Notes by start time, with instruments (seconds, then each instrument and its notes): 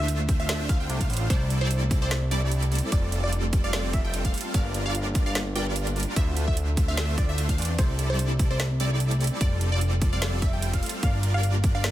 Already playing: analog synth bass D2
0.00 supersaw synth A3 D4 F4 C5 E5, synth pluck E5
0.08 synth arpeggio sound D4, closed hi-hat
0.19 synth arpeggio sound A3
0.29 kick, closed hi-hat
0.40 supersaw synth A3 D4 F4 C5 F5, synth arpeggio sound C4, synth pluck E5 F5
0.49 supersaw synth A3 D4 F4 C5 E5, synth arpeggio sound A3, synth pluck E5, snare, closed hi-hat
0.60 synth arpeggio sound C4
0.69 analog synth bass D2, synth arpeggio sound C5, synth pluck F5, kick, closed hi-hat
0.80 supersaw synth A3 D4 F4 C5 G5, synth arpeggio sound C4, synth pluck G5
0.89 analog synth bass C2, synth arpeggio sound A3, closed hi-hat
1.00 supersaw synth A3 D4 F4 C5 F5, synth arpeggio sound D4, synth pluck F5, kick, closed hi-hat
1.10 analog synth bass A1, synth arpeggio sound C5, closed hi-hat, open hi-hat
1.17 closed hi-hat
1.21 synth arpeggio sound D4
1.30 analog synth bass C2, supersaw synth G3 C4 E4 A4 D5, synth arpeggio sound A3, synth pluck C5 D5, kick, closed hi-hat
1.41 synth arpeggio sound C4
1.50 synth arpeggio sound D4, closed hi-hat
1.61 supersaw synth G3 C4 E4 A4 D5, synth arpeggio sound E4, synth pluck C5 D5
1.71 synth arpeggio sound D4, closed hi-hat
1.82 synth arpeggio sound A3
1.91 kick, closed hi-hat
2.02 supersaw synth G3 C4 E4 A4 D5, synth arpeggio sound C4, synth pluck C5 D5
2.11 synth arpeggio sound A3, snare, closed hi-hat
2.22 synth arpeggio sound C4
2.31 supersaw synth G3 C4 E4 A4 D5, synth arpeggio sound D4, synth pluck D5, closed hi-hat
2.42 supersaw synth G3 C4 E4 A4 D5, synth arpeggio sound E4, synth pluck D5
2.52 synth arpeggio sound D4, closed hi-hat
2.63 synth arpeggio sound A3, closed hi-hat
2.72 synth arpeggio sound A3, closed hi-hat, open hi-hat
2.78 closed hi-hat
2.83 synth arpeggio sound C4
2.92 analog synth bass F1, supersaw synth G3 C4 F4 A4 D5, synth arpeggio sound A3, synth pluck D5, kick, closed hi-hat
3.03 synth arpeggio sound C4
3.12 synth arpeggio sound D4, closed hi-hat
3.23 supersaw synth G3 C4 F4 A4 D5, synth arpeggio sound F4, synth pluck D5
3.33 synth arpeggio sound D4, closed hi-hat
3.44 synth arpeggio sound A3
3.53 kick, closed hi-hat
3.64 supersaw synth G3 C4 F4 A4 F5, synth arpeggio sound C4, synth pluck D5 F5
3.73 supersaw synth G3 C4 F4 A4 D5, synth arpeggio sound A3, synth pluck D5, snare, closed hi-hat
3.84 synth arpeggio sound C4
3.93 analog synth bass F1, synth pluck E5, kick, closed hi-hat
4.04 supersaw synth G3 C4 F4 A4 G5, synth arpeggio sound F4, synth pluck G5
4.14 synth arpeggio sound D4, closed hi-hat
4.25 supersaw synth G3 C4 F4 A4 F5, synth arpeggio sound A3, synth pluck F5, kick, closed hi-hat
4.34 synth arpeggio sound A3, closed hi-hat, open hi-hat
4.41 closed hi-hat
4.45 synth arpeggio sound C4
4.54 analog synth bass G1, supersaw synth G3 D4 F4 A#4 D5, synth arpeggio sound A#3, synth pluck D5 F5, kick, closed hi-hat
4.65 synth arpeggio sound D4
4.74 synth arpeggio sound F4, closed hi-hat
4.86 supersaw synth G3 D4 F4 A#4 D5, synth arpeggio sound G4, synth pluck D5 F5
4.95 synth arpeggio sound F4, closed hi-hat
5.06 synth arpeggio sound A#3
5.15 synth arpeggio sound A#3, kick, closed hi-hat
5.26 supersaw synth G3 D4 F4 A#4 D5, synth arpeggio sound D4, synth pluck D5 F5
5.35 synth arpeggio sound A#3, snare, closed hi-hat
5.46 synth arpeggio sound D4
5.55 supersaw synth G3 D4 F4 A#4 D5, synth arpeggio sound F4, synth pluck D5 G5, closed hi-hat
5.67 supersaw synth G3 D4 F4 A#4 D5, synth arpeggio sound G4, synth pluck D5
5.76 synth arpeggio sound F4, closed hi-hat
5.87 synth arpeggio sound A#3, closed hi-hat
5.96 synth arpeggio sound A#3, closed hi-hat, open hi-hat
6.03 closed hi-hat
6.07 synth arpeggio sound D4
6.16 analog synth bass D2, supersaw synth A3 D4 F4 C5 E5, synth arpeggio sound A3, synth pluck E5, kick, closed hi-hat
6.27 synth arpeggio sound C4
6.37 synth arpeggio sound D4, closed hi-hat
6.48 supersaw synth A3 D4 F4 C5 E5, synth arpeggio sound E4, synth pluck E5, kick
6.57 synth arpeggio sound D4, closed hi-hat
6.68 synth arpeggio sound A3
6.77 synth arpeggio sound A3, kick, closed hi-hat
6.88 supersaw synth A3 D4 F4 C5 F5, synth arpeggio sound C4, synth pluck E5 F5
6.97 synth arpeggio sound A3, supersaw synth A3 D4 F4 C5 E5, synth pluck E5, snare, closed hi-hat
7.09 synth arpeggio sound C4
7.18 synth pluck D5, kick, closed hi-hat
7.29 supersaw synth A3 D4 F4 C5 E5, synth arpeggio sound E4, synth pluck E5
7.38 synth arpeggio sound D4, closed hi-hat
7.49 synth arpeggio sound A3, supersaw synth A3 D4 F4 C5 F5, synth pluck F5, kick, closed hi-hat
7.58 analog synth bass E2, synth arpeggio sound A3, supersaw synth A3 D4 F4 C5 D5, synth pluck D5, closed hi-hat, open hi-hat
7.65 closed hi-hat
7.69 synth arpeggio sound C4
7.78 analog synth bass C2, supersaw synth G3 C4 E4 A4 D5, synth arpeggio sound A3, synth pluck C5 D5, kick, closed hi-hat
7.90 synth arpeggio sound C4
7.99 synth arpeggio sound D4, closed hi-hat
8.10 supersaw synth G3 C4 E4 A4 D5, synth arpeggio sound E4, synth pluck C5 D5
8.19 synth arpeggio sound D4, closed hi-hat
8.30 synth arpeggio sound A3
8.39 synth arpeggio sound A3, kick, closed hi-hat
8.50 supersaw synth G3 C4 E4 A4 D5, synth arpeggio sound C4, synth pluck C5 D5
8.60 synth arpeggio sound A3, snare, closed hi-hat
8.71 synth arpeggio sound C4
8.80 supersaw synth G3 C4 E4 A4 D5, synth arpeggio sound D4, synth pluck D5, closed hi-hat
8.91 supersaw synth G3 C4 E4 A4 D5, synth arpeggio sound E4, synth pluck D5
9.00 synth arpeggio sound D4, closed hi-hat
9.11 synth arpeggio sound A3, closed hi-hat
9.20 synth arpeggio sound A3, closed hi-hat, open hi-hat
9.27 closed hi-hat
9.32 synth arpeggio sound C4
9.41 analog synth bass F1, supersaw synth G3 C4, synth arpeggio sound A3, synth pluck D5, kick, closed hi-hat
9.52 synth arpeggio sound C4
9.61 synth arpeggio sound D4, closed hi-hat
9.72 supersaw synth G3 C4 F4 A4 D5, synth arpeggio sound F4, synth pluck D5
9.81 synth arpeggio sound D4, closed hi-hat
9.92 synth arpeggio sound A3
10.02 synth arpeggio sound A3, kick, closed hi-hat
10.13 supersaw synth G3 C4 F4 A4 F5, synth arpeggio sound C4, synth pluck D5 F5
10.22 supersaw synth G3 C4 F4 A4 D5, synth arpeggio sound A3, synth pluck D5, snare, closed hi-hat
10.33 synth arpeggio sound C4
10.42 analog synth bass F1, synth pluck E5, kick, closed hi-hat
10.53 supersaw synth G3 C4 F4 A4 G5, synth arpeggio sound F4, synth pluck G5
10.62 synth arpeggio sound D4, closed hi-hat
10.73 supersaw synth G3 C4 F4 A4 F5, synth arpeggio sound A3, synth pluck F5, kick, closed hi-hat
10.83 synth arpeggio sound A3, closed hi-hat, open hi-hat
10.89 closed hi-hat
10.94 synth arpeggio sound C4
11.03 analog synth bass G1, supersaw synth G3 D4 F4 A#4 D5, synth arpeggio sound A#3, synth pluck D5 F5, kick, closed hi-hat
11.14 synth arpeggio sound D4
11.23 synth arpeggio sound F4, closed hi-hat
11.34 supersaw synth G3 D4 F4 A#4 D5, synth arpeggio sound G4, synth pluck D5 F5
11.43 synth arpeggio sound F4, closed hi-hat
11.54 synth arpeggio sound A#3
11.64 kick, closed hi-hat
11.75 supersaw synth G3 D4 F4 A#4 D5, synth arpeggio sound D4, synth pluck D5 F5
11.84 synth arpeggio sound A#3, snare, closed hi-hat